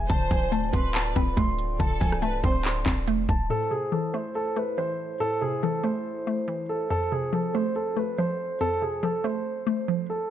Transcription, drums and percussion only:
0.10 kick, closed hi-hat
0.31 kick, open hi-hat
0.52 closed hi-hat
0.73 kick, closed hi-hat
0.95 clap, closed hi-hat
1.16 kick, closed hi-hat
1.37 kick, closed hi-hat
1.59 closed hi-hat
1.80 kick, closed hi-hat
2.01 kick, open hi-hat
2.12 cross-stick
2.22 closed hi-hat
2.44 kick, closed hi-hat
2.65 clap, closed hi-hat
2.86 kick, clap, closed hi-hat
3.08 closed hi-hat
3.29 kick, closed hi-hat

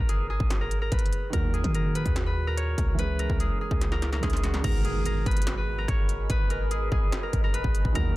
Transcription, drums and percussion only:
0.09 closed hi-hat
0.40 kick
0.50 snare, closed hi-hat
0.71 closed hi-hat
0.92 kick, closed hi-hat
0.99 closed hi-hat
1.06 closed hi-hat
1.13 closed hi-hat
1.33 kick, closed hi-hat
1.54 closed hi-hat
1.64 kick, closed hi-hat
1.75 closed hi-hat
1.95 closed hi-hat
2.06 kick, closed hi-hat
2.16 snare, closed hi-hat
2.58 closed hi-hat
2.78 kick, closed hi-hat
2.99 closed hi-hat
3.19 closed hi-hat
3.30 kick
3.40 closed hi-hat
3.71 kick
3.81 snare, closed hi-hat
3.92 snare
4.02 snare, closed hi-hat
4.13 snare
4.23 kick, snare, closed hi-hat
4.30 snare, closed hi-hat
4.37 closed hi-hat
4.44 snare, closed hi-hat
4.54 snare
4.64 kick, closed hi-hat, crash
4.85 closed hi-hat
5.05 closed hi-hat
5.26 kick, closed hi-hat
5.31 closed hi-hat
5.37 closed hi-hat
5.42 closed hi-hat
5.47 snare, closed hi-hat
5.88 kick, cross-stick, closed hi-hat
6.09 closed hi-hat
6.30 kick, closed hi-hat
6.50 closed hi-hat
6.71 closed hi-hat
6.92 kick
7.12 snare, closed hi-hat
7.33 kick, closed hi-hat
7.54 closed hi-hat
7.64 kick
7.75 closed hi-hat
7.85 kick
7.95 kick, closed hi-hat

